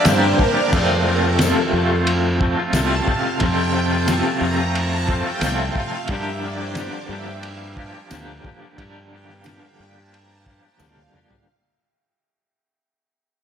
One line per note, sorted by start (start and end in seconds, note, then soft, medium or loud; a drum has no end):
0.05 0.70 G2 medium
0.05 0.32 G2 loud
0.05 0.70 D3 medium
0.05 0.38 F3 loud
0.05 0.39 A#3 loud
0.05 0.39 D4 loud
0.05 0.41 G4 loud
0.05 0.28 C5 medium
0.05 snare loud
0.05 ride bell medium
0.05 tambourine medium
0.28 0.50 A#4 medium
0.38 0.57 F3 medium
0.38 0.56 A#3 medium
0.38 0.54 D4 medium
0.38 0.53 G4 medium
0.38 kick medium
0.51 0.69 G4 medium
0.51 0.71 D5 loud
0.55 0.72 F3 medium
0.55 0.71 A#3 medium
0.55 0.70 D4 medium
0.72 1.40 F2 medium
0.72 1.52 F2 loud
0.72 1.39 C3 medium
0.72 1.05 F3 medium
0.72 1.07 A3 loud
0.72 1.08 C4 loud
0.72 1.08 F4 loud
0.72 0.93 C5 loud
0.72 kick loud
0.72 crash loud
0.90 snare soft
0.98 1.17 A#4 medium
1.06 1.26 F3 medium
1.06 1.25 A3 medium
1.06 1.24 C4 medium
1.06 1.23 F4 medium
1.20 1.43 F4 medium
1.20 1.81 A4 medium
1.24 1.42 F3 medium
1.24 1.43 A3 medium
1.24 1.43 C4 medium
1.39 2.73 F2 medium
1.39 1.91 C3 medium
1.39 1.60 F3 loud
1.39 snare loud
1.39 ride bell medium
1.39 tambourine loud
1.43 1.59 A3 loud
1.43 1.58 C4 loud
1.43 1.56 F4 loud
1.57 1.73 F3 medium
1.57 1.75 A3 medium
1.57 1.76 C4 medium
1.57 1.77 F4 medium
1.73 2.53 F2 medium
1.73 1.93 F3 medium
1.73 1.92 A3 medium
1.73 1.91 C4 medium
1.77 1.90 F4 medium
1.90 2.40 F3 medium
1.90 2.40 A3 medium
1.90 2.41 C4 medium
1.90 2.43 F4 medium
2.07 ride bell medium
2.40 2.60 F3 medium
2.40 2.58 A3 medium
2.40 2.56 C4 medium
2.40 2.56 F4 medium
2.40 kick medium
2.57 2.74 F3 medium
2.57 2.74 A3 medium
2.57 2.74 C4 medium
2.57 2.76 F4 medium
2.73 3.00 C2 loud
2.73 3.38 F2 medium
2.73 3.39 C3 medium
2.73 3.05 F3 loud
2.73 3.06 A3 loud
2.73 3.07 C4 loud
2.73 3.08 F4 loud
2.73 3.09 A5 loud
2.73 snare loud
2.73 ride bell medium
2.73 tambourine loud
3.06 3.26 F3 medium
3.06 3.24 A3 medium
3.06 3.23 C4 medium
3.06 3.23 F4 medium
3.06 3.22 F5 medium
3.06 kick medium
3.23 3.41 F3 medium
3.23 3.41 A3 medium
3.23 3.42 C4 medium
3.23 3.43 F4 medium
3.40 4.06 F2 medium
3.40 4.21 F2 loud
3.40 4.08 C3 loud
3.40 3.74 F3 medium
3.40 3.74 A3 loud
3.40 3.75 C4 loud
3.40 3.76 F4 medium
3.40 kick loud
3.40 ride bell medium
3.44 3.88 G5 loud
3.74 3.94 F3 medium
3.74 3.93 A3 medium
3.74 3.92 C4 medium
3.74 3.91 F4 medium
3.88 4.10 F4 medium
3.88 4.33 A5 loud
3.93 4.09 F3 medium
3.93 4.08 A3 medium
3.93 4.09 C4 medium
4.08 4.58 F2 loud
4.08 4.59 C3 loud
4.08 4.27 F3 loud
4.08 4.25 A3 loud
4.08 4.24 C4 loud
4.08 4.24 F4 loud
4.08 snare loud
4.08 ride bell medium
4.08 tambourine loud
4.24 4.40 F3 medium
4.24 4.41 A3 medium
4.24 4.42 C4 medium
4.24 4.44 F4 medium
4.31 4.72 A#5 loud
4.41 5.21 F2 medium
4.41 4.60 F3 medium
4.41 4.59 A3 medium
4.41 4.57 C4 medium
4.41 4.58 F4 medium
4.58 5.07 F3 medium
4.58 5.07 A3 medium
4.58 5.09 C4 medium
4.58 5.10 F4 medium
4.75 5.22 A5 loud
4.75 ride bell medium
5.07 5.27 F3 medium
5.07 5.26 A3 medium
5.07 5.25 C4 medium
5.07 5.24 F4 medium
5.07 kick medium
5.21 5.44 F4 medium
5.21 5.62 G5 loud
5.26 5.42 F3 medium
5.26 5.42 A3 medium
5.26 5.43 C4 medium
5.41 5.68 C2 loud
5.41 6.07 F2 loud
5.41 6.07 C3 medium
5.41 5.75 F3 medium
5.41 5.75 A3 loud
5.41 5.76 C4 loud
5.41 5.78 F4 loud
5.41 snare loud
5.41 ride bell medium
5.41 tambourine medium
5.65 6.11 F5 medium
5.75 5.95 F3 medium
5.75 5.93 A3 medium
5.75 5.92 C4 medium
5.75 5.92 F4 medium
5.75 kick medium
5.92 6.10 F3 medium
5.92 6.08 A3 medium
5.92 6.08 C4 medium
5.92 6.12 F4 medium
6.08 6.89 G2 loud
6.08 6.75 G2 loud
6.08 6.76 D3 loud
6.08 6.42 F3 loud
6.08 6.44 A#3 loud
6.08 6.33 E5 loud
6.08 kick loud
6.08 ride bell medium
6.12 6.44 D4 loud
6.12 6.45 G4 loud
6.33 6.53 D5 medium
6.42 6.62 F3 medium
6.42 6.61 A#3 medium
6.42 6.60 D4 medium
6.42 6.59 G4 medium
6.57 6.77 D4 medium
6.57 6.79 G4 medium
6.57 6.78 C5 medium
6.62 6.77 F3 medium
6.62 6.77 A#3 medium
6.75 7.33 G2 loud
6.75 7.27 D3 loud
6.75 6.95 F3 loud
6.75 6.94 A#3 loud
6.75 6.94 D4 loud
6.75 6.92 G4 loud
6.75 7.08 D5 medium
6.75 snare loud
6.75 ride bell medium
6.75 tambourine medium
6.92 7.08 F3 medium
6.92 7.10 A#3 medium
6.92 7.11 D4 medium
6.92 7.12 G4 medium
7.09 7.89 G2 medium
7.09 7.29 F3 medium
7.09 7.28 A#3 medium
7.09 7.27 D4 medium
7.09 7.26 G4 medium
7.09 7.44 E5 medium
7.27 7.75 F3 medium
7.27 7.77 A#3 medium
7.27 7.77 D4 medium
7.27 7.78 G4 medium
7.43 7.57 F5 medium
7.43 ride bell medium
7.75 7.95 F3 medium
7.75 7.94 A#3 medium
7.75 7.93 D4 medium
7.75 7.92 G4 medium
7.75 7.91 G5 medium
7.75 kick medium
7.93 8.11 F3 medium
7.93 8.11 A#3 medium
7.93 8.12 D4 medium
7.93 8.12 G4 medium
8.10 8.38 D2 loud
8.10 8.76 G2 loud
8.10 8.76 D3 medium
8.10 8.42 F3 medium
8.10 8.44 A#3 loud
8.10 8.45 D4 loud
8.10 8.46 G4 loud
8.10 snare loud
8.10 ride bell medium
8.10 tambourine loud
8.43 8.61 F3 medium
8.43 8.61 A#3 medium
8.43 8.60 D4 medium
8.43 8.58 G4 medium
8.43 kick medium
8.60 8.77 F3 medium
8.60 8.77 A#3 medium
8.60 8.78 D4 medium
8.60 8.78 G4 medium
8.76 9.42 G2 medium
8.76 9.58 G2 loud
8.76 9.44 D3 medium
8.76 9.09 F3 loud
8.76 9.11 A#3 loud
8.76 9.12 D4 loud
8.76 9.13 G4 loud
8.76 kick loud
8.76 ride bell medium
9.11 9.29 F3 medium
9.11 9.28 A#3 medium
9.11 9.27 D4 medium
9.11 9.26 G4 medium
9.11 9.27 G5 loud
9.27 9.44 F3 medium
9.27 9.44 A#3 medium
9.27 9.45 D4 medium
9.27 9.45 G4 medium
9.27 9.63 F5 medium
9.27 snare soft
9.44 9.95 G2 medium
9.44 9.95 D3 loud
9.44 9.64 F3 loud
9.44 9.63 A#3 medium
9.44 9.61 D4 medium
9.44 9.61 G4 loud
9.44 snare loud
9.44 ride bell medium
9.44 tambourine medium
9.62 9.78 F3 medium
9.62 9.79 A#3 medium
9.62 9.80 D4 medium
9.62 9.81 G4 medium
9.62 9.97 G5 medium
9.79 10.59 G2 medium
9.79 9.98 F3 medium
9.79 9.97 A#3 medium
9.79 9.96 D4 medium
9.79 9.95 G4 medium
9.96 10.45 F3 medium
9.96 10.47 A#3 medium
9.96 10.48 D4 medium
9.96 10.49 G4 medium
9.96 10.12 A5 loud
10.13 10.28 A#5 loud
10.13 ride bell medium
10.29 10.43 A5 loud
10.46 10.65 F3 medium
10.46 10.64 A#3 medium
10.46 10.63 D4 medium
10.46 kick medium
10.50 10.61 G4 medium
10.63 10.79 A#3 medium
10.63 10.79 D4 medium
10.63 10.79 G4 medium
10.63 10.79 G5 medium
10.67 10.78 F3 medium
10.78 11.06 D2 loud
10.78 11.44 G2 loud
10.78 11.44 D3 loud
10.78 11.11 F3 loud
10.78 11.12 A#3 loud
10.78 11.13 D4 loud
10.78 11.14 G4 loud
10.78 11.42 F5 medium
10.78 snare medium
10.78 tambourine medium
10.97 high tom medium
11.12 11.30 F3 medium
11.12 11.29 A#3 medium
11.12 11.28 D4 medium
11.12 11.27 G4 medium
11.12 mid tom medium
11.28 11.45 F3 medium
11.28 11.45 A#3 medium
11.28 11.44 D4 medium
11.28 11.44 G4 medium
11.28 floor tom loud